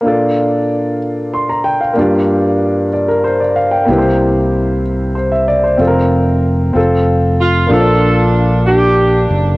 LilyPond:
<<
  \new Staff \with { instrumentName = "Grand piano" } { \time 6/8 \key bes \major \tempo 4. = 63 << { r2 c'''16 bes''16 g''16 f''16~ | f''16 r4 r16 d''16 bes'16 c''16 d''16 f''16 g''16~ | g''16 r4. r16 c''16 e''16 d''16 c''16~ | c''16 r2 r8. |
r2. | } \\ { <bes d' f' a' d''>2. | <bes d' f' g' d''>2. | <bes c' e' g' ces'' c''>2. | <c' f' a' bes'>4. <c' f' a'>4. |
<bes d' f' a' c'' d''>2. | } >> }
  \new Staff \with { instrumentName = "Grand piano" } { \clef bass \time 6/8 \key bes \major bes,4. r4. | g,4. r4. | c4. r4. | r2. |
bes,4. r4. | }
  \new Staff \with { instrumentName = "Horn section" } { \time 6/8 \key bes \major << { r2. | r2. | r2. | r2 r8 f'8 |
a'4 r8 g'4 r8 | } \\ { r2. | r2. | r2. | r2. |
<d' f'>4. d'4. | } >> }
  \new Staff \with { instrumentName = "Fingered electric bass" } { \clef bass \time 6/8 \key bes \major r2. | r2. | c,2. | f,,4. f,,4. |
bes,,2~ bes,,8 ges,,8 | }
>>